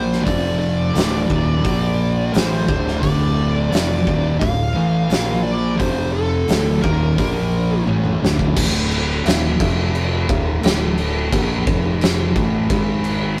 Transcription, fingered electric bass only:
Already playing: A#1
0.26 F1
0.95 D1
1.30 D#1
1.65 A#1
2.35 A1
2.68 D1
3.03 D1
3.72 F1
4.06 D#1
4.41 D1
4.76 A1
5.10 A#1
5.80 F1
6.48 D1
6.84 D#1
7.18 A#1
7.86 A1
8.21 D1
8.56 D1
9.25 D#1
9.60 F1
10.29 D#1
10.64 D1
11.33 A#1
11.67 F1
12.35 A1
12.70 G#1

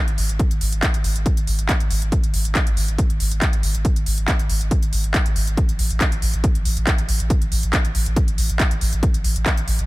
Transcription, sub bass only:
0.08 G#1
0.18 G#1
0.29 G#1
0.51 G#1
0.61 G#1
0.72 G#1
0.94 G#1
1.04 G#1
1.16 G#1
1.37 G#1
1.47 G#1
1.59 G#1
1.80 G#1
1.91 G#1
2.02 G#1
2.24 G#1
2.34 G#1
2.45 G#1
2.67 G#1
2.77 G#1
2.88 G#1
3.10 G#1
3.20 G#1
3.31 G#1
3.53 G#1
3.63 G#1
3.75 G#1
3.96 G#1
4.06 G#1
4.18 G#1
4.39 G#1
4.49 G#1
4.61 G#1
4.82 G#1
4.93 G#1
5.04 G#1
5.26 G#1
5.36 G#1
5.47 G#1
5.69 A1
5.79 A1
5.90 A1
6.12 A1
6.22 A1
6.34 A1
6.55 A1
6.65 A1
6.77 A1
6.98 A1
7.09 A1
7.20 A1
7.42 A1
7.52 A1
7.63 A1
7.85 A1
7.95 A1
8.06 A1
8.28 A1
8.38 A1
8.49 A1
8.71 A1
8.81 A1
8.93 A1
9.14 A1
9.24 A1
9.36 A1
9.57 A1
9.68 A1
9.79 A1

